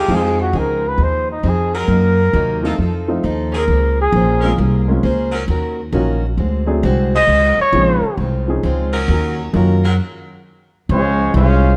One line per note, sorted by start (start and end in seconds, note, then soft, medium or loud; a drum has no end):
0.00 0.51 F3 loud
0.00 0.50 C4 medium
0.00 0.50 D#4 loud
0.00 0.15 G4 medium
0.00 0.50 G#4 loud
0.08 0.53 F2 medium
0.08 0.40 F3 soft
0.08 1.35 F3 medium
0.08 1.35 G#3 medium
0.08 0.41 C4 medium
0.08 1.36 C4 medium
0.08 1.36 D#4 medium
0.08 0.42 D#4 soft
0.08 1.36 F4 medium
0.08 0.42 G#4 medium
0.14 0.41 G#4 medium
0.42 0.60 F#4 medium
0.53 0.97 C#2 medium
0.53 0.85 F3 medium
0.53 0.86 C4 medium
0.53 0.86 D#4 medium
0.53 0.86 G#4 medium
0.58 0.90 A#4 medium
0.88 1.05 B4 medium
0.98 1.42 D#2 medium
0.98 1.30 F3 soft
0.98 1.31 C4 soft
0.98 1.31 D#4 soft
0.98 1.32 G#4 soft
1.03 1.31 C5 medium
1.31 1.50 D#4 medium
1.43 1.87 F2 medium
1.43 1.75 F3 medium
1.43 1.75 C4 medium
1.43 1.76 D#4 medium
1.43 1.76 G#4 medium
1.49 1.76 G#4 medium
1.75 2.32 F#3 loud
1.75 2.32 C4 medium
1.75 2.32 D#4 medium
1.75 2.80 A#4 loud
1.75 2.32 A#4 loud
1.88 2.32 F#2 medium
1.88 2.20 C3 medium
1.88 2.21 F#3 soft
1.88 2.21 A#3 medium
1.88 2.22 D#4 medium
2.33 2.77 D#2 medium
2.33 2.65 C3 medium
2.33 2.66 F#3 medium
2.33 2.66 A#3 medium
2.33 2.66 D#4 medium
2.63 2.77 F3 medium
2.63 2.75 F3 medium
2.63 2.77 A3 medium
2.63 2.77 C4 medium
2.63 2.75 C4 medium
2.63 2.78 D#4 medium
2.63 2.75 D#4 medium
2.63 2.78 F4 medium
2.63 2.75 A4 loud
2.78 3.22 F2 medium
2.78 3.10 F3 soft
2.78 3.11 C4 soft
2.78 3.11 D#4 soft
2.78 3.12 A4 medium
3.08 3.22 F3 medium
3.08 3.22 A3 medium
3.08 3.23 C4 medium
3.08 3.23 D#4 medium
3.08 3.23 F4 medium
3.23 3.67 D#2 medium
3.23 3.55 F3 medium
3.23 3.55 C4 medium
3.23 3.56 D#4 medium
3.23 3.56 A4 medium
3.52 3.63 G#3 loud
3.52 3.64 C4 medium
3.52 3.63 C#4 medium
3.52 3.63 G#4 loud
3.57 3.97 A#4 medium
3.68 4.12 C#2 medium
3.68 4.00 A#3 soft
3.68 4.01 C#4 soft
3.68 4.01 G#4 soft
3.72 4.02 C5 soft
4.01 4.56 G#4 medium
4.12 4.57 A#1 loud
4.12 4.45 A#3 medium
4.12 4.46 C#4 medium
4.12 4.46 G#4 medium
4.12 4.46 C5 medium
4.41 4.53 G#3 medium
4.41 4.57 G#3 medium
4.41 4.58 A#3 medium
4.41 4.52 C4 medium
4.41 4.58 C4 medium
4.41 4.52 C#4 medium
4.41 4.52 A#4 loud
4.45 4.58 C#4 medium
4.45 4.58 F4 medium
4.58 5.02 C2 medium
4.58 4.90 A#3 soft
4.58 4.91 C#4 soft
4.58 4.92 G#4 soft
4.58 4.92 C5 medium
4.88 5.02 G#3 medium
4.88 5.02 A#3 medium
4.88 5.03 C4 medium
4.88 5.03 C#4 medium
4.88 5.03 F4 medium
5.03 5.47 C#2 medium
5.03 5.35 A#3 medium
5.03 5.35 C#4 medium
5.03 5.35 G#4 medium
5.03 5.36 C5 medium
5.32 5.43 F#3 loud
5.32 5.43 C#4 medium
5.32 5.43 D#4 medium
5.32 5.43 A#4 medium
5.48 5.92 D#2 medium
5.48 5.80 D#3 soft
5.48 5.80 C#4 soft
5.48 5.81 F#4 medium
5.48 5.81 A#4 medium
5.92 6.37 A#1 medium
5.92 6.25 D#3 medium
5.92 6.20 F#3 medium
5.92 6.20 A#3 medium
5.92 6.25 C#4 medium
5.92 6.21 C#4 medium
5.92 6.21 D#4 medium
5.92 6.21 F4 medium
5.92 6.25 F#4 medium
5.92 6.26 A#4 medium
6.38 6.82 D2 medium
6.38 6.70 D3 soft
6.38 6.70 G#3 soft
6.38 6.71 C4 medium
6.38 6.71 F#4 soft
6.66 6.81 F#3 medium
6.66 6.81 A3 medium
6.66 6.82 C4 medium
6.66 6.82 D4 medium
6.66 6.82 G#4 medium
6.83 7.27 C2 medium
6.83 7.15 D3 medium
6.83 7.16 G#3 medium
6.83 7.16 C4 medium
6.83 7.16 F#4 medium
7.15 7.72 G#3 loud
7.15 7.72 C#4 loud
7.15 7.72 F4 loud
7.15 7.71 C5 loud
7.15 7.57 D#5 loud
7.27 7.56 C#2 medium
7.27 7.60 C#3 soft
7.27 7.60 G#3 soft
7.27 7.61 C4 medium
7.27 7.61 F4 medium
7.58 8.16 C#5 medium
7.58 muted upright bass stroke soft
7.72 8.01 A#1 loud
7.72 8.05 C#3 medium
7.72 8.00 F3 medium
7.72 8.05 G#3 medium
7.72 8.00 C4 medium
7.72 8.06 C4 medium
7.72 8.00 C#4 medium
7.72 8.00 D#4 medium
7.72 8.06 F4 medium
7.72 8.01 G#4 medium
8.02 muted upright bass stroke soft
8.17 8.62 C2 medium
8.17 8.50 C#3 soft
8.17 8.50 G#3 soft
8.17 8.51 C4 medium
8.17 8.51 F4 medium
8.48 9.06 F3 medium
8.48 9.06 C4 medium
8.48 9.06 C#4 medium
8.48 9.06 D#4 medium
8.48 9.07 G#4 medium
8.63 9.07 C#2 medium
8.63 8.95 C#3 medium
8.63 8.95 G#3 medium
8.63 8.96 C4 medium
8.63 8.96 F4 medium
8.92 9.50 F#3 loud
8.92 9.51 C#4 medium
8.92 9.51 D#4 medium
8.92 9.50 A#4 loud
9.08 9.52 D#2 medium
9.08 9.40 D#3 soft
9.08 9.41 C#4 medium
9.08 9.41 F#4 medium
9.08 9.41 A#4 medium
9.53 9.97 F#2 medium
9.53 9.86 D#3 medium
9.53 9.80 F#3 medium
9.53 9.80 A#3 medium
9.53 9.81 C#4 medium
9.53 9.86 C#4 medium
9.53 9.81 D#4 medium
9.53 9.81 F4 medium
9.53 9.86 F#4 medium
9.53 9.86 A#4 medium
9.83 9.93 G#2 loud
9.83 9.94 F#3 medium
9.83 9.94 C4 loud
9.83 9.94 F4 medium
9.83 9.94 A#4 loud
10.89 11.33 C#2 loud
10.89 11.20 C#3 medium
10.89 11.31 F3 medium
10.89 11.31 G#3 medium
10.89 11.21 G#3 medium
10.89 11.32 G#3 medium
10.89 11.22 C4 medium
10.89 11.31 C#4 medium
10.89 11.32 F4 medium
10.89 11.22 F4 soft
10.89 11.32 C5 medium
10.89 11.32 C#5 medium
11.34 11.77 C2 medium
11.34 11.66 C#3 medium
11.34 11.76 G#3 medium
11.34 11.66 G#3 medium
11.34 11.67 C4 medium
11.34 11.76 C#4 medium
11.34 11.77 C#4 medium
11.34 11.76 F4 medium
11.34 11.67 F4 medium
11.34 11.77 G#4 medium
11.34 11.77 C5 medium
11.34 11.77 F5 medium